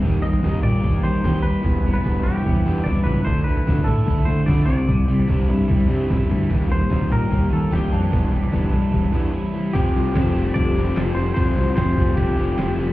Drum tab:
RD |----------------|----------------|----------------|----------------|
SD |----o-------o---|------------o---|----o-------o---|------------o---|
T2 |-----oo---------|------------o-o-|-----oo---------|------------o-o-|
FT |o--o--o--o--o---|o--o--o--o--o---|o--o--o--o--o---|o--o--o--o--o---|
BD |o---o---o---o---|o---o---o---o---|o---o---o---o---|o---o---o---o---|

RD |----------------|----------------|b---b---b---b---|b---b---b---b---|
SD |----o-------o---|----------------|--o-o-----o-oo--|--o-o-------oo--|
T2 |-----oo---------|----------------|----------------|----------------|
FT |o--o--o--o--o---|o--o--o--o------|----------------|----------------|
BD |o---o---o---o---|o---o---o-------|o---o---o-------|o---o-o-o-------|